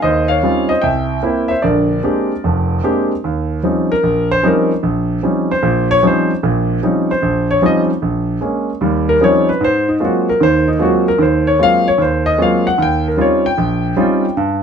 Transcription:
0.02 0.38 D#2 medium
0.02 0.28 C5 medium
0.02 0.27 D#5 medium
0.28 0.67 C#5 medium
0.28 0.70 F5 medium
0.43 0.71 G3 soft
0.43 0.71 C4 soft
0.43 0.71 C#4 soft
0.43 0.71 D#4 soft
0.43 0.71 F4 medium
0.69 0.83 C5 medium
0.69 0.83 D#5 medium
0.82 1.18 C2 medium
0.82 1.46 E5 medium
0.82 1.51 G5 medium
1.23 1.51 A#3 medium
1.23 1.51 C4 soft
1.23 1.51 E4 medium
1.48 1.63 C5 medium
1.48 1.63 E5 medium
1.62 1.98 A#1 medium
1.62 1.98 D3 medium
1.62 2.80 A#4 medium
1.62 2.79 D5 medium
2.03 2.31 G#3 soft
2.03 2.31 A#3 soft
2.03 2.31 C4 soft
2.03 2.31 D4 soft
2.03 2.31 G4 medium
2.44 2.78 F1 medium
2.44 2.78 F2 medium
2.84 3.11 G#3 soft
2.84 3.11 A#3 soft
2.84 3.11 C4 soft
2.84 3.11 D4 soft
2.84 3.11 G4 medium
3.24 3.58 D#2 medium
3.63 3.91 F3 medium
3.63 3.91 G3 soft
3.63 3.91 C4 soft
3.63 3.91 C#4 soft
3.63 3.91 D#4 medium
3.92 4.28 A#4 medium
4.03 4.38 A#1 medium
4.31 4.44 C5 medium
4.43 4.70 F3 medium
4.43 4.71 G3 medium
4.43 4.71 C4 soft
4.43 4.71 C#4 soft
4.43 4.71 D#4 medium
4.47 4.70 A#4 medium
4.83 5.17 A#1 medium
5.23 5.50 F3 soft
5.23 5.50 G3 soft
5.23 5.50 C4 soft
5.23 5.51 C#4 soft
5.23 5.51 D#4 soft
5.51 5.87 C5 medium
5.63 5.97 A#1 medium
5.63 5.97 A#2 medium
5.91 6.03 C#5 loud
6.02 6.30 F3 medium
6.02 6.30 G3 soft
6.02 6.30 C4 medium
6.02 6.30 C#4 soft
6.02 6.30 D#4 medium
6.07 6.30 C5 medium
6.43 6.77 A#1 medium
6.43 6.77 A#2 medium
6.83 7.10 F3 soft
6.83 7.10 G3 soft
6.83 7.10 C4 soft
6.83 7.10 C#4 soft
6.83 7.10 D#4 medium
7.11 7.47 C5 medium
7.22 7.57 A#1 medium
7.51 7.63 C#5 medium
7.62 7.89 F3 medium
7.62 7.89 G3 medium
7.62 7.89 C4 medium
7.62 7.89 C#4 soft
7.62 7.90 D#4 medium
7.66 7.80 D#5 medium
8.02 8.36 A#1 medium
8.41 8.69 G#3 soft
8.41 8.69 A#3 soft
8.41 8.69 C#4 soft
8.81 9.15 D#2 medium
8.81 9.16 G3 medium
9.09 9.21 A#4 medium
9.20 9.48 F3 medium
9.20 9.48 G3 soft
9.20 9.48 C4 medium
9.20 9.49 C#4 soft
9.20 9.49 D#4 medium
9.20 9.48 C#5 medium
9.49 9.61 B4 medium
9.61 9.95 G#2 medium
9.61 9.88 C5 medium
9.88 10.01 D#4 medium
10.00 10.27 F#3 soft
10.00 10.28 G#3 soft
10.00 10.28 A#3 soft
10.00 10.28 C4 soft
10.00 10.28 F4 medium
10.05 10.28 F#4 medium
10.29 10.41 A#4 medium
10.40 10.75 D#2 medium
10.40 10.75 D#3 medium
10.40 10.67 C5 medium
10.68 10.80 D#4 medium
10.79 11.07 F#3 medium
10.79 11.07 G#3 soft
10.79 11.07 A#3 medium
10.79 11.07 C4 medium
10.79 11.07 F4 medium
10.79 11.06 F#4 medium
11.08 11.20 A#4 medium
11.18 11.53 D#2 medium
11.18 11.53 D#3 medium
11.18 11.46 C5 medium
11.47 11.60 C#5 medium
11.59 11.86 F#3 soft
11.59 11.86 G#3 soft
11.59 11.87 A#3 soft
11.59 11.87 C4 soft
11.59 11.87 F4 medium
11.63 11.86 F5 loud
11.88 12.00 C#5 medium
11.98 12.33 D#2 medium
11.98 12.26 C5 medium
12.26 12.39 D#5 medium
12.38 12.66 F#3 medium
12.38 12.66 G#3 soft
12.38 12.66 A#3 medium
12.38 12.66 C4 soft
12.38 12.66 F4 medium
12.42 12.66 F5 medium
12.67 12.79 F#5 medium
12.78 13.12 D#2 medium
12.82 13.06 G5 medium
13.08 13.19 A#4 medium
13.17 13.45 G3 soft
13.17 13.45 C4 soft
13.17 13.45 C#4 soft
13.17 13.45 D#4 soft
13.17 13.45 F4 medium
13.21 13.45 C#5 medium
13.46 14.34 G5 medium
13.58 13.92 A#1 medium
13.97 14.24 G3 medium
13.97 14.24 C4 medium
13.97 14.24 C#4 soft
13.97 14.24 D#4 medium
13.97 14.25 F4 medium
14.37 14.63 G2 medium

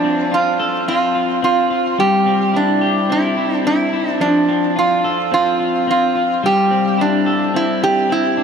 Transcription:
0.00 1.98 F3 medium
0.00 0.87 C4 medium
0.00 0.34 D4 medium
0.32 1.14 F4 medium
0.32 0.87 F4 medium
0.60 2.04 A4 medium
0.88 1.42 C4 medium
0.88 1.39 F4 medium
1.15 1.69 F4 medium
1.42 2.26 C4 medium
1.42 1.99 F4 medium
1.70 2.04 F4 medium
1.98 4.20 G3 medium
1.98 2.56 G4 medium
2.26 3.09 C4 medium
2.54 3.12 D4 medium
2.54 3.36 E4 medium
2.81 4.26 G4 medium
3.09 3.64 C4 medium
3.09 3.65 E4 medium
3.37 3.92 E4 soft
3.65 4.48 C4 medium
3.65 4.11 E4 medium
3.93 4.26 E4 medium
4.11 4.21 D4 medium
4.20 6.43 F3 medium
4.20 4.78 D4 medium
4.48 5.31 C4 medium
4.76 5.58 F4 medium
4.76 5.33 F4 medium
5.04 7.26 A4 medium
5.32 5.87 C4 medium
5.32 5.89 F4 medium
5.59 6.14 F4 medium
5.87 6.70 C4 medium
5.87 6.41 F4 medium
6.15 6.48 F4 medium
6.43 8.43 G3 medium
6.43 7.01 G4 medium
6.71 7.54 C4 medium
6.98 7.56 D4 medium
6.98 7.80 E4 medium
7.26 8.43 A4 medium
7.54 8.09 C4 medium
7.54 7.83 E4 medium
7.82 8.37 E4 medium
7.82 8.11 G4 medium
8.09 8.43 C4 medium
8.09 8.43 E4 medium
8.37 8.43 D4 soft

